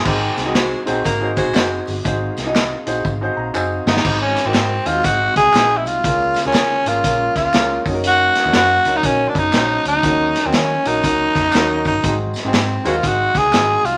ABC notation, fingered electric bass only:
X:1
M:4/4
L:1/16
Q:"Swing" 1/4=120
K:Abmix
V:1 name="Fingered electric bass" clef=bass
A,,,2 C,,4 B,,,2 A,,,3 B,,, G,,,2 =G,,,2 | A,,,2 C,,4 B,,,2 A,,,2 B,,,2 G,,,2 =G,,,2 | A,,,3 A,,, A,,2 E,,2 A,,,2 C,,2 B,,,2 C,,2 | D,,3 D,, D,2 A,,,2 B,,,2 D,,2 D,,2 G,,,2- |
G,,,3 E,, G,,2 D,,2 B,,,2 G,,,2 B,,,2 =D,,2 | E,,3 E,, E,2 B,,,2 D,,2 F,,2 E,,2 =G,,,2 | A,,,3 A,,, A,,2 E,,2 A,,,2 C,,2 A,,,2 C,,2 |]